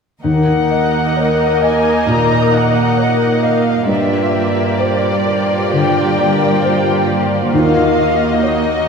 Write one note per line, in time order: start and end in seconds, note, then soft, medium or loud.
0.22 3.84 D#2 soft
0.22 2.03 D#2 soft
0.22 3.92 D#3 soft
0.22 3.85 A#3 soft
0.22 3.85 D#4 soft
0.22 3.85 A#4 soft
0.22 3.85 D#5 soft
0.22 1.58 F#5 soft
0.70 2.51 D#4 soft
0.70 1.44 D#5 soft
1.15 2.96 A#4 soft
1.15 1.62 C#5 soft
1.61 3.42 D#5 soft
1.61 2.34 D#5 soft
1.61 2.08 G#5 soft
2.06 2.80 A#2 soft
2.06 4.32 A#3 soft
2.06 2.54 A#5 medium
2.52 3.92 D#4 soft
2.52 3.26 D#5 soft
2.52 3.45 F#5 soft
2.97 6.87 A#4 soft
2.97 3.43 C#5 soft
3.43 3.89 D#5 soft
3.43 3.93 D#5 soft
3.43 3.89 F5 soft
3.87 5.68 G2 soft
3.87 7.49 G2 soft
3.87 7.56 G2 soft
3.87 7.49 A#3 soft
3.87 8.39 F4 soft
3.87 7.50 G4 soft
3.87 7.54 D5 soft
3.87 4.77 E5 soft
4.33 6.16 A#3 soft
4.33 5.07 D5 soft
4.78 5.26 C5 soft
4.78 5.72 D5 soft
4.78 6.61 D5 soft
5.25 7.06 F4 soft
5.25 6.01 D5 soft
5.72 7.56 D3 soft
5.72 6.46 D3 soft
5.72 7.06 G5 medium
6.17 8.88 A#3 soft
6.17 6.90 D5 soft
6.62 7.08 C5 soft
6.62 7.56 D5 soft
7.07 7.56 F4 soft
7.07 7.53 D5 soft
7.52 8.88 D#2 soft
7.52 8.88 D#3 soft
7.52 8.88 A#3 soft
7.52 8.88 F#4 soft
7.52 8.88 D#5 soft
7.52 8.39 F5 medium
7.97 8.88 D#4 soft
7.97 8.70 D#5 soft
8.43 8.88 D#4 soft
8.43 8.88 C#5 soft
8.43 8.88 D#5 soft